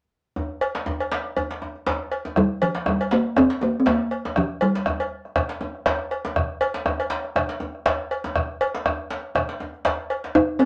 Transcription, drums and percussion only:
0.36 djembe bass medium
0.61 cowbell soft
0.75 djembe slap medium
0.86 djembe tone medium
0.86 djembe bass medium
1.00 cowbell soft
1.12 djembe slap medium
1.25 djembe slap soft
1.37 cowbell soft
1.37 djembe bass medium
1.51 djembe slap soft
1.62 djembe tone medium
1.75 djembe slap soft
1.87 cowbell soft
1.87 djembe slap medium
1.87 djembe bass medium
2.12 cowbell soft
2.25 djembe slap soft
2.25 djembe tone soft
2.36 bombo rim medium
2.36 bombo low medium
2.36 djembe slap soft
2.36 djembe bass medium
2.61 cowbell medium
2.61 djembe slap soft
2.75 djembe slap medium
2.86 bombo rim medium
2.86 djembe slap soft
2.86 djembe tone medium
2.86 djembe bass medium
3.01 cowbell soft
3.11 djembe slap medium
3.25 bombo rim soft
3.25 djembe slap soft
3.36 bombo rim medium
3.36 bombo low medium
3.36 cowbell soft
3.36 djembe bass medium
3.50 djembe slap medium
3.61 djembe slap soft
3.61 djembe tone medium
3.75 bombo rim soft
3.86 bombo rim medium
3.86 cowbell soft
3.86 djembe slap medium
3.86 djembe bass medium
4.11 cowbell soft
4.25 djembe slap medium
4.25 djembe tone medium
4.36 bombo rim medium
4.36 bombo low medium
4.36 djembe slap soft
4.36 djembe bass medium
4.61 cowbell medium
4.61 djembe slap soft
4.75 djembe slap medium
4.86 bombo rim medium
4.86 djembe slap soft
4.86 djembe tone medium
4.86 djembe bass medium
5.00 cowbell soft
5.25 bombo rim soft
5.25 djembe slap soft
5.36 bombo rim loud
5.36 bombo low loud
5.36 cowbell soft
5.36 djembe bass medium
5.49 djembe slap medium
5.61 djembe slap soft
5.61 djembe tone medium
5.75 bombo rim soft
5.86 bombo rim medium
5.86 cowbell soft
5.86 djembe slap medium
5.86 djembe bass medium
6.11 cowbell soft
6.25 djembe slap medium
6.25 djembe tone soft
6.36 bombo rim medium
6.36 bombo low loud
6.36 djembe slap soft
6.36 djembe bass medium
6.61 cowbell medium
6.61 djembe slap soft
6.74 djembe slap medium
6.86 bombo rim medium
6.86 djembe slap soft
6.86 djembe tone medium
6.86 djembe bass medium
7.00 cowbell soft
7.10 djembe slap medium
7.24 bombo rim soft
7.24 djembe slap soft
7.36 bombo rim medium
7.36 bombo low loud
7.36 cowbell soft
7.36 djembe bass medium
7.49 djembe slap medium
7.60 djembe slap soft
7.60 djembe tone medium
7.75 bombo rim soft
7.86 bombo rim loud
7.86 cowbell soft
7.86 djembe slap medium
7.86 djembe bass medium
8.11 cowbell soft
8.24 djembe slap medium
8.24 djembe tone medium
8.36 bombo rim medium
8.36 bombo low medium
8.36 djembe slap soft
8.36 djembe bass medium
8.50 djembe slap soft
8.61 cowbell medium
8.74 djembe slap medium
8.86 bombo rim loud
8.86 djembe tone medium
8.86 djembe bass medium
9.00 bombo rim soft
9.10 djembe slap medium
9.35 bombo rim loud
9.35 bombo low loud
9.35 cowbell soft
9.35 djembe bass medium
9.49 djembe slap medium
9.60 bombo rim soft
9.60 djembe tone medium
9.74 djembe slap soft
9.85 bombo rim loud
9.85 cowbell soft
9.85 djembe slap medium
9.85 djembe bass medium
9.99 djembe slap soft
10.10 cowbell soft
10.24 bombo rim soft
10.24 djembe slap soft
10.35 bombo rim medium
10.35 bombo low medium
10.35 djembe slap soft
10.35 djembe bass medium
10.60 cowbell medium
10.60 djembe slap soft

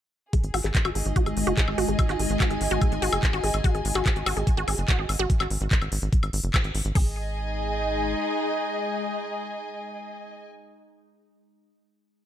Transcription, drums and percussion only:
0.33 kick loud
0.33 closed hi-hat medium
0.44 closed hi-hat soft
0.54 open hi-hat loud
0.54 high woodblock soft
0.64 clap soft
0.64 closed hi-hat medium
0.75 kick loud
0.75 clap loud
0.75 closed hi-hat medium
0.85 closed hi-hat soft
0.85 high woodblock medium
0.95 open hi-hat loud
1.06 closed hi-hat medium
1.16 kick loud
1.16 closed hi-hat medium
1.26 closed hi-hat soft
1.26 high woodblock soft
1.37 open hi-hat loud
1.47 closed hi-hat medium
1.57 kick loud
1.57 clap loud
1.57 closed hi-hat medium
1.68 high woodblock soft
1.78 open hi-hat loud
1.88 closed hi-hat medium
1.99 kick loud
1.99 closed hi-hat medium
1.99 high woodblock medium
2.09 clap soft
2.09 closed hi-hat soft
2.19 open hi-hat loud
2.30 closed hi-hat medium
2.40 kick loud
2.40 clap loud
2.40 closed hi-hat medium
2.40 high woodblock soft
2.50 closed hi-hat soft
2.61 open hi-hat loud
2.71 closed hi-hat medium
2.82 kick loud
2.82 closed hi-hat medium
2.82 high woodblock soft
2.92 closed hi-hat soft
3.02 open hi-hat loud
3.13 closed hi-hat medium
3.13 high woodblock medium
3.23 kick loud
3.23 clap loud
3.23 closed hi-hat medium
3.33 closed hi-hat soft
3.44 open hi-hat loud
3.54 closed hi-hat medium
3.54 high woodblock soft
3.64 kick loud
3.64 closed hi-hat medium
3.75 closed hi-hat soft
3.85 open hi-hat loud
3.95 clap soft
3.95 closed hi-hat medium
3.95 high woodblock soft
4.06 kick loud
4.06 clap loud
4.06 closed hi-hat medium
4.16 closed hi-hat soft
4.26 open hi-hat loud
4.26 high woodblock medium
4.37 closed hi-hat medium
4.47 kick loud
4.47 closed hi-hat medium
4.57 closed hi-hat soft
4.68 open hi-hat loud
4.68 high woodblock soft
4.78 closed hi-hat medium
4.88 kick loud
4.88 clap loud
4.88 closed hi-hat medium
5.09 open hi-hat loud
5.09 high woodblock soft
5.19 closed hi-hat soft
5.30 kick loud
5.30 closed hi-hat medium
5.40 clap soft
5.40 closed hi-hat soft
5.40 high woodblock medium
5.50 open hi-hat loud
5.61 closed hi-hat medium
5.71 kick loud
5.71 clap loud
5.71 closed hi-hat medium
5.82 closed hi-hat soft
5.82 high woodblock soft
5.92 open hi-hat loud
6.02 closed hi-hat soft
6.13 kick loud
6.13 closed hi-hat medium
6.23 closed hi-hat soft
6.23 high woodblock soft
6.33 open hi-hat loud
6.44 closed hi-hat medium
6.54 kick loud
6.54 clap loud
6.54 closed hi-hat medium
6.54 high woodblock medium
6.64 closed hi-hat soft
6.75 open hi-hat loud
6.85 closed hi-hat soft
6.95 kick loud
6.95 open hi-hat medium

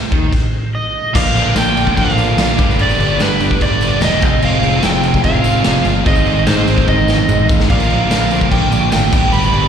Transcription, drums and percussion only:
0.12 kick loud
0.33 kick medium
0.33 crash medium
1.15 kick loud
1.15 crash loud
1.15 tambourine soft
1.15 crash medium
1.36 crash medium
1.56 snare loud
1.56 tambourine medium
1.56 crash medium
1.77 tambourine medium
1.77 crash medium
1.87 kick medium
1.87 tambourine soft
1.97 kick loud
1.97 tambourine soft
1.97 crash medium
2.09 snare soft
2.18 tambourine medium
2.18 crash medium
2.38 snare loud
2.38 tambourine medium
2.38 crash medium
2.58 kick loud
2.58 tambourine medium
2.58 crash medium
2.70 snare soft
2.79 tambourine soft
2.79 crash medium
2.89 tambourine medium
3.00 crash medium
3.20 snare loud
3.20 tambourine medium
3.20 crash medium
3.40 tambourine medium
3.40 crash medium
3.50 kick medium
3.50 tambourine soft
3.60 kick loud
3.60 tambourine soft
3.60 crash medium
3.81 tambourine medium
3.81 crash medium
4.01 snare loud
4.01 tambourine medium
4.01 crash loud
4.21 kick loud
4.21 tambourine medium
4.21 crash medium
4.41 tambourine soft
4.41 crash medium
4.63 crash medium
4.83 snare loud
4.83 tambourine medium
4.83 crash medium
5.03 tambourine medium
5.03 crash medium
5.14 kick medium
5.14 tambourine soft
5.24 kick loud
5.24 tambourine soft
5.24 crash medium
5.44 tambourine medium
5.44 crash medium
5.64 snare loud
5.64 tambourine medium
5.64 crash medium
5.85 tambourine medium
5.85 crash medium
6.06 kick loud
6.06 tambourine soft
6.06 crash medium
6.16 tambourine medium
6.26 tambourine soft
6.26 crash medium
6.36 tambourine soft
6.47 snare loud
6.47 tambourine medium
6.47 crash medium
6.67 tambourine medium
6.67 crash medium
6.78 kick medium
6.88 kick loud
6.88 high tom medium
6.88 tambourine soft
6.98 tambourine soft
7.08 snare medium
7.08 tambourine medium
7.18 mid tom medium
7.29 mid tom medium
7.29 tambourine loud
7.39 tambourine soft
7.49 kick loud
7.49 tambourine medium
7.59 snare medium
7.59 tambourine soft
7.70 kick loud
7.70 tambourine soft
7.70 crash medium
7.80 tambourine medium
7.90 crash medium
8.11 snare loud
8.11 tambourine loud
8.11 crash medium
8.31 tambourine medium
8.31 crash medium
8.41 kick medium
8.51 kick loud
8.51 tambourine soft
8.51 crash loud
8.72 tambourine medium
8.72 crash medium
8.92 snare loud
8.92 tambourine loud
8.92 crash medium
9.12 kick loud
9.12 tambourine medium
9.12 crash loud
9.33 tambourine soft
9.33 crash medium
9.43 tambourine medium
9.53 crash medium

